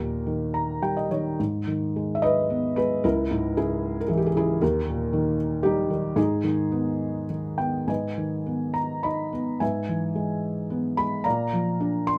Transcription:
0.00 1.35 D#2 medium
0.00 1.08 A#2 soft
0.00 1.07 G4 soft
0.00 1.07 A#4 medium
0.26 1.10 D#3 soft
0.54 0.80 A#5 medium
0.82 1.37 G3 soft
0.82 0.96 G5 soft
0.97 1.10 D#5 medium
1.11 1.38 D#3 soft
1.11 1.37 C#5 soft
1.39 3.00 G#2 soft
1.67 2.74 D#3 soft
1.96 2.77 G#3 soft
2.15 2.22 E5 medium
2.22 2.74 B4 medium
2.22 2.79 D#5 medium
2.50 3.02 B3 soft
2.76 3.04 G#3 soft
2.76 3.02 G#4 medium
2.76 3.04 B4 medium
3.04 4.57 C#2 medium
3.04 3.54 E4 medium
3.04 3.58 A#4 medium
3.31 4.32 G#2 soft
3.57 4.34 C#3 soft
3.57 3.98 E4 medium
3.57 4.02 G#4 medium
4.01 4.09 A#4 medium
4.08 4.60 E3 medium
4.08 4.17 G#4 medium
4.17 4.26 G4 medium
4.26 4.35 G#4 medium
4.35 4.60 C#3 medium
4.35 4.60 E4 medium
4.35 4.63 G#4 medium
4.61 6.14 D#2 medium
4.61 5.36 G4 medium
4.61 5.35 A#4 medium
4.88 5.88 A#2 soft
5.13 5.89 D#3 medium
5.63 6.16 G3 medium
5.63 6.14 D#4 medium
5.63 6.13 G4 medium
5.90 6.16 D#3 medium
6.16 7.84 G#2 medium
6.16 7.27 D#4 medium
6.16 7.26 G#4 medium
6.44 7.28 D#3 soft
6.72 7.57 B3 soft
7.30 7.87 D#3 soft
7.58 7.87 B3 soft
7.58 7.86 G5 medium
7.88 9.57 G#2 soft
7.88 8.72 B4 soft
7.88 8.72 D#5 soft
7.88 8.78 G#5 soft
8.18 9.31 D#3 soft
8.46 9.31 B3 soft
8.74 9.05 A#5 medium
9.03 9.60 D#4 soft
9.03 9.57 D#5 soft
9.03 9.62 B5 medium
9.33 9.60 B3 soft
9.60 11.22 G#2 soft
9.60 10.94 B4 soft
9.60 10.95 E5 soft
9.60 11.02 G#5 medium
9.89 10.95 E3 soft
10.15 10.96 G#3 soft
10.70 11.24 B3 soft
10.97 11.25 G#3 soft
10.97 11.26 B5 medium
11.24 12.18 A#2 medium
11.24 12.04 D5 soft
11.24 12.04 F5 soft
11.24 12.10 A#5 medium
11.53 12.18 F3 soft
11.80 12.18 D4 soft
12.07 12.18 C6 medium

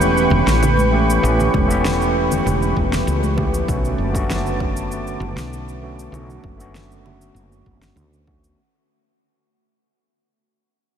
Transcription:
0.00 0.26 E1 medium
0.00 0.92 E3 medium
0.00 0.92 A3 medium
0.00 0.93 B3 medium
0.00 0.93 C#4 medium
0.00 0.94 G4 medium
0.00 8.54 B4 medium
0.00 3.64 G5 medium
0.00 3.64 C#6 medium
0.00 cabasa medium
0.17 cabasa soft
0.30 0.44 E1 loud
0.30 low conga medium
0.46 1.18 A1 medium
0.46 snare medium
0.46 cabasa medium
0.63 low conga medium
0.63 cabasa medium
0.77 high conga medium
0.77 cabasa soft
0.92 1.19 E3 medium
0.92 1.19 A3 medium
0.92 1.20 B3 medium
0.92 1.20 C#4 medium
0.92 1.20 G4 medium
1.10 cabasa medium
1.22 1.48 A1 loud
1.22 1.65 E3 medium
1.22 1.65 A3 medium
1.22 1.66 B3 medium
1.22 1.66 C#4 medium
1.22 1.66 G4 medium
1.22 cabasa medium
1.39 low conga medium
1.39 cabasa soft
1.54 2.41 E1 medium
1.54 kick loud
1.54 high conga medium
1.54 low conga medium
1.67 3.33 E3 medium
1.67 3.33 A3 medium
1.67 3.33 B3 medium
1.67 3.34 C#4 medium
1.67 3.35 G4 loud
1.67 cabasa medium
1.85 snare medium
1.85 cabasa medium
2.02 cabasa soft
2.31 high conga medium
2.31 low conga medium
2.31 cabasa medium
2.46 2.76 E1 medium
2.46 low conga medium
2.46 cabasa medium
2.62 cabasa soft
2.77 3.01 E1 medium
2.77 kick medium
2.93 snare medium
2.93 cabasa medium
3.07 3.63 C#2 medium
3.07 cabasa medium
3.23 high conga medium
3.23 cabasa soft
3.36 3.64 E3 medium
3.36 3.64 A3 medium
3.36 3.65 B3 medium
3.36 3.65 C#4 medium
3.36 3.65 G4 medium
3.36 kick loud
3.36 low conga medium
3.54 cabasa medium
3.68 3.93 B1 medium
3.68 4.11 D3 medium
3.68 4.11 A3 medium
3.68 4.11 B3 medium
3.68 4.11 C#4 medium
3.68 4.12 F#4 medium
3.68 6.11 A5 medium
3.68 8.54 D6 medium
3.68 kick loud
3.68 cabasa medium
3.85 cabasa soft
3.98 5.16 F#1 medium
4.12 5.78 D3 medium
4.12 5.78 A3 medium
4.12 5.79 B3 medium
4.12 5.79 C#4 medium
4.12 kick loud
4.12 cabasa medium
4.17 5.80 F#4 medium
4.30 snare medium
4.30 low conga medium
4.30 cabasa medium
4.46 cabasa soft
4.60 kick loud
4.77 cabasa medium
4.92 cabasa medium
5.07 cabasa soft
5.20 5.33 F#1 medium
5.20 low conga medium
5.36 6.08 B1 medium
5.36 snare medium
5.36 cabasa medium
5.53 cabasa soft
5.68 cabasa soft
5.82 6.09 D3 medium
5.82 6.09 A3 medium
5.82 6.10 B3 medium
5.82 6.10 C#4 medium
5.82 6.10 F#4 medium
5.99 cabasa medium
6.11 6.37 B1 medium
6.11 6.55 D3 medium
6.11 6.55 A3 medium
6.11 6.55 B3 medium
6.11 6.55 C#4 medium
6.11 6.56 F#4 medium
6.11 8.56 B5 medium
6.11 low conga medium
6.11 cabasa medium
6.30 cabasa soft
6.43 7.30 F#1 medium
6.43 kick loud
6.57 8.23 D3 medium
6.57 8.23 A3 medium
6.57 8.23 B3 medium
6.57 8.24 C#4 medium
6.57 8.25 F#4 medium
6.57 cabasa medium
6.75 snare medium
6.75 cabasa medium
6.92 cabasa soft
7.06 low conga medium
7.21 cabasa medium
7.34 7.66 F#1 medium
7.34 cabasa medium
7.52 cabasa soft
7.66 7.90 F#1 medium
7.66 kick medium
7.82 snare medium
7.82 cabasa medium
7.96 8.52 D2 medium
7.96 low conga medium
7.96 cabasa soft
8.13 cabasa soft
8.27 8.54 D3 medium
8.27 8.54 A3 medium
8.27 8.54 B3 medium
8.27 8.55 C#4 medium
8.27 8.55 F#4 medium
8.27 kick medium
8.44 cabasa medium

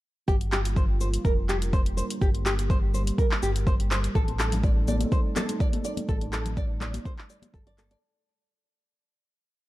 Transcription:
0.28 1.18 G1 loud
0.28 7.98 G3 medium
0.28 4.11 A#3 medium
0.28 4.12 D4 medium
0.28 2.20 F4 medium
0.28 0.35 G4 medium
0.28 4.11 A#4 medium
0.28 kick loud
0.28 cabasa soft
0.41 closed hi-hat soft
0.52 0.59 G4 medium
0.52 clap medium
0.52 cabasa medium
0.65 closed hi-hat medium
0.65 cabasa soft
0.76 0.83 C5 medium
0.76 kick loud
0.76 cabasa soft
1.01 1.08 C5 medium
1.01 cabasa medium
1.14 closed hi-hat medium
1.14 cabasa soft
1.25 2.03 F1 medium
1.25 1.32 A#4 medium
1.25 kick loud
1.25 cabasa soft
1.49 1.56 G4 medium
1.49 clap medium
1.49 cabasa medium
1.62 closed hi-hat medium
1.62 cabasa soft
1.73 1.80 C5 medium
1.73 kick loud
1.73 cabasa soft
1.86 closed hi-hat soft
1.97 2.04 C5 medium
1.97 cabasa medium
2.10 closed hi-hat medium
2.10 cabasa soft
2.21 3.12 G1 medium
2.21 2.28 G4 medium
2.21 4.13 G4 medium
2.21 kick loud
2.21 cabasa soft
2.35 closed hi-hat soft
2.46 2.53 G4 medium
2.46 clap medium
2.46 cabasa medium
2.59 closed hi-hat medium
2.59 cabasa soft
2.70 2.77 C5 medium
2.70 kick loud
2.70 cabasa soft
2.94 3.01 C5 medium
2.94 cabasa medium
3.07 closed hi-hat medium
3.07 cabasa medium
3.18 3.25 A#4 medium
3.18 kick loud
3.18 cabasa soft
3.31 clap medium
3.43 4.08 G1 loud
3.43 3.50 G4 medium
3.43 cabasa medium
3.56 closed hi-hat medium
3.56 cabasa medium
3.67 3.74 C5 medium
3.67 kick loud
3.67 cabasa soft
3.80 closed hi-hat soft
3.91 3.98 C5 medium
3.91 clap medium
3.91 cabasa medium
4.04 closed hi-hat medium
4.04 cabasa soft
4.15 5.05 A1 loud
4.15 7.99 A3 medium
4.15 7.99 C4 medium
4.15 7.99 D#4 medium
4.15 4.22 A4 medium
4.15 7.98 A4 medium
4.15 kick loud
4.15 cabasa soft
4.28 closed hi-hat soft
4.28 muted conga soft
4.39 4.46 A4 loud
4.39 clap medium
4.39 cabasa medium
4.52 closed hi-hat medium
4.52 low conga loud
4.52 cabasa medium
4.63 4.71 D5 medium
4.63 kick loud
4.63 muted conga soft
4.63 low conga medium
4.63 cabasa soft
4.88 4.95 D5 medium
4.88 muted conga soft
4.88 high conga loud
4.88 cabasa medium
5.01 closed hi-hat medium
5.01 high conga loud
5.01 cabasa medium
5.12 5.19 C5 loud
5.12 kick loud
5.12 muted conga soft
5.12 cabasa soft
5.36 5.43 A4 loud
5.36 clap medium
5.36 high conga loud
5.36 low conga loud
5.36 cabasa medium
5.49 closed hi-hat medium
5.49 muted conga soft
5.49 cabasa medium
5.60 5.67 D5 loud
5.60 kick loud
5.60 cabasa soft
5.73 closed hi-hat soft
5.73 muted conga soft
5.73 high conga loud
5.84 5.92 D5 medium
5.84 cabasa medium
5.97 closed hi-hat medium
5.97 muted conga medium
5.97 high conga medium
5.97 cabasa medium
6.09 6.99 A1 loud
6.09 6.16 A4 medium
6.09 kick loud
6.09 cabasa soft
6.21 closed hi-hat soft
6.21 muted conga soft
6.33 6.40 A4 medium
6.33 clap medium
6.33 cabasa medium
6.46 closed hi-hat soft
6.46 low conga loud
6.46 cabasa medium
6.57 6.64 D5 loud
6.57 kick loud
6.57 muted conga soft
6.57 low conga medium
6.57 cabasa soft
6.81 6.88 D5 medium
6.81 clap medium
6.81 muted conga soft
6.81 high conga loud
6.81 cabasa medium
6.94 closed hi-hat medium
6.94 high conga loud
6.94 cabasa medium
7.05 7.12 C5 loud
7.05 kick loud
7.05 muted conga soft
7.05 cabasa soft
7.18 clap medium
7.30 7.37 D5 medium
7.30 cabasa medium
7.42 closed hi-hat medium
7.42 muted conga soft
7.42 high conga loud
7.42 cabasa medium
7.54 7.95 G1 medium
7.54 7.61 A4 medium
7.54 kick loud
7.54 cabasa soft
7.67 7.77 D5 loud
7.67 closed hi-hat soft
7.67 muted conga soft
7.78 7.90 A4 loud
7.78 clap medium
7.78 high conga medium
7.78 cabasa medium
7.91 7.97 D5 loud
7.91 closed hi-hat medium
7.91 muted conga medium
7.91 cabasa medium

